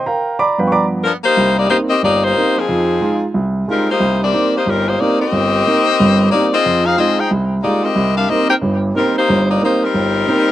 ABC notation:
X:1
M:4/4
L:1/8
Q:"Swing" 1/4=182
K:Cm
V:1 name="Saxophone section"
z6 [F,=B,D^A] [^A,EGc]- | [^A,EGc] [B,EGd] [B,EGc] [CGBe] [B,EGd] [B,EGc]2 [F,CE_A]- | [F,CEA]3 z3 [G,CEB] [B,EGc]- | [B,EGc] [CGBd]2 [B,EGc] [G,CEB] [B,EGc] [B,EGd] [CGBe]- |
[CGBe]6 [B,EGd] [CFAe]- | [CFAe] [EAcf] [CFAe] [EAcg] z2 [B,EGd] [CGBe]- | [CGBe] [DGBf] [CGBe] [EBcg] z2 [G,CEB] [B,EGc]- | [B,EGc] [B,EGd] [B,EGc] [G,CEB]4- [G,CEB] |]
V:2 name="Grand piano"
[^Afg^a]2 [da=bd'] [=Bfgb] [dab_d'=d'] z3 | z8 | z8 | z8 |
z8 | z8 | z8 | z8 |]
V:3 name="Grand piano"
z3 [G,,F,=B,]3 z2 | C,,2 [B,CE] z G,,,2 [B,CE] z | F,,2 [A,EF] z C,,2 [A,EF] z | C,,2 [B,CE] z G,,,2 [B,CE] z |
G,,,2 [B,CE] z [G,,,G,,]2 [B,CE] z | F,,2 [A,EF] z C,,2 [A,EF] z | C,,2 [B,CE] z [G,,,G,,]2 [B,CE] z | [G,,,G,,]2 [B,CE] z G,,,2 [B,CE] z |]